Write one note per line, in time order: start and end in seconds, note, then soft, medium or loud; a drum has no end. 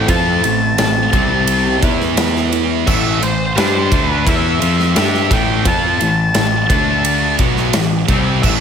0.07 0.41 F2 medium
0.07 0.77 A2 medium
0.07 0.41 F3 loud
0.07 0.42 C4 loud
0.07 0.62 C4 medium
0.07 0.42 F4 loud
0.07 0.59 A4 medium
0.07 0.78 A5 loud
0.07 kick loud
0.07 ride loud
0.42 0.76 A1 medium
0.42 0.71 A2 medium
0.42 0.71 E3 medium
0.42 ride medium
0.60 0.79 C4 medium
0.60 0.79 E4 medium
0.60 0.80 A4 medium
0.77 1.11 A1 medium
0.77 1.05 A2 medium
0.77 1.11 A2 medium
0.77 1.06 E3 medium
0.77 1.11 E3 medium
0.77 1.12 C4 loud
0.77 1.12 E4 medium
0.77 1.12 A4 loud
0.77 1.79 A5 medium
0.77 snare loud
0.77 ride medium
1.13 1.79 C2 loud
1.13 1.82 C3 medium
1.13 1.65 C3 medium
1.13 1.82 G3 medium
1.13 1.30 G3 medium
1.13 1.83 C4 medium
1.13 1.30 C4 medium
1.13 1.29 G4 loud
1.13 kick loud
1.13 ride medium
1.30 muted clean electric guitar stroke soft
1.47 ride loud
1.65 1.82 G3 medium
1.65 1.81 C4 medium
1.65 1.80 G4 medium
1.82 2.83 E2 medium
1.82 2.85 E3 medium
1.82 2.15 E3 medium
1.82 2.85 B3 medium
1.82 2.00 B3 loud
1.82 2.86 E4 loud
1.82 1.99 E4 loud
1.82 1.99 B4 medium
1.82 kick loud
1.82 ride medium
2.00 muted clean electric guitar stroke soft
2.00 snare soft
2.16 2.49 E3 medium
2.16 2.50 B3 loud
2.16 2.51 E4 medium
2.16 2.52 B4 loud
2.16 snare loud
2.16 ride loud
2.36 snare soft
2.50 2.84 E3 medium
2.50 2.84 B3 medium
2.50 2.85 E4 medium
2.50 2.85 B4 medium
2.50 ride medium
2.86 3.20 A1 medium
2.86 3.20 A2 loud
2.86 3.20 E3 loud
2.86 3.21 A3 medium
2.86 3.23 E5 medium
2.86 kick loud
2.86 crash medium
3.21 3.54 A1 medium
3.21 3.49 A2 medium
3.21 3.49 E3 medium
3.21 3.56 C5 medium
3.21 ride medium
3.56 3.89 G2 loud
3.56 3.90 G3 medium
3.56 3.90 D4 medium
3.56 3.90 G4 medium
3.56 4.07 C5 medium
3.56 snare loud
3.56 ride medium
3.91 4.24 D2 medium
3.91 4.25 D3 medium
3.91 4.25 A3 medium
3.91 4.25 D4 medium
3.91 kick loud
3.91 ride medium
4.07 4.29 B4 medium
4.26 4.59 E2 medium
4.26 4.60 E3 medium
4.26 4.60 B3 loud
4.26 4.60 E4 medium
4.26 4.97 E5 medium
4.26 kick loud
4.26 ride loud
4.60 4.94 F2 medium
4.60 4.94 F3 medium
4.60 4.94 C4 loud
4.60 4.95 F4 medium
4.60 ride medium
4.79 snare soft
4.95 5.29 G2 loud
4.95 5.29 G3 medium
4.95 5.29 D4 loud
4.95 5.30 G4 loud
4.95 snare loud
4.95 ride medium
4.99 5.33 E5 loud
5.14 snare soft
5.30 5.63 A1 medium
5.30 5.64 A2 medium
5.30 5.64 E3 medium
5.30 5.65 A3 medium
5.30 5.64 G5 loud
5.30 kick loud
5.30 ride medium
5.65 5.98 F2 medium
5.65 5.99 F3 loud
5.65 6.00 C4 loud
5.65 6.00 F4 loud
5.65 6.35 A5 loud
5.65 kick loud
5.65 ride medium
6.01 6.33 A1 medium
6.01 6.28 A2 medium
6.01 6.28 E3 medium
6.01 ride medium
6.35 6.68 A1 medium
6.35 6.63 A2 medium
6.35 6.63 E3 medium
6.35 7.36 A5 loud
6.35 snare loud
6.35 ride medium
6.70 7.35 D2 loud
6.70 7.39 D3 medium
6.70 7.39 A3 loud
6.70 7.39 D4 loud
6.70 kick loud
6.70 ride medium
7.05 ride loud
7.39 7.72 B1 medium
7.39 7.73 B2 medium
7.39 7.73 F#3 medium
7.39 7.74 B3 loud
7.39 kick loud
7.39 ride medium
7.57 snare soft
7.73 8.07 A1 medium
7.73 8.03 A2 medium
7.73 8.03 E3 medium
7.73 snare loud
7.73 ride medium
8.08 8.41 C2 medium
8.08 8.43 C3 medium
8.08 8.44 G3 medium
8.08 8.44 C4 loud
8.08 kick loud
8.08 ride medium
8.42 8.60 A1 loud
8.42 8.60 A2 loud
8.42 8.60 E3 loud
8.42 8.60 A3 loud
8.42 8.52 E5 loud
8.42 kick loud
8.42 crash medium